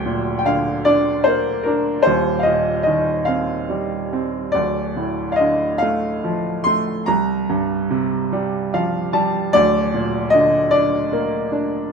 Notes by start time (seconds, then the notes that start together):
Already playing: D1 D2 G5
0.06 A#2
0.39 G5
0.45 D3 F5
0.85 D4 D5
1.24 A#3 C5
1.63 D4 A#4
2.03 D#1 D#2 C5
2.39 D#5 F5
2.47 A#2
2.83 D#3 D#5
3.25 C4 F5
3.70 G3
4.13 C4
4.52 D1 D2 D5
4.97 A2
5.32 D#5 F5
5.40 D3
5.78 F5
5.82 A3
6.24 F3
6.64 A3 C6
7.06 C2 A#5
7.50 G2
7.90 C3
8.33 G3
8.74 F3 F5
9.13 G3 A5
9.53 D1 D2 D5
9.94 A#2
10.30 D3 D#5
10.71 D4 D5
11.12 A#3
11.52 D4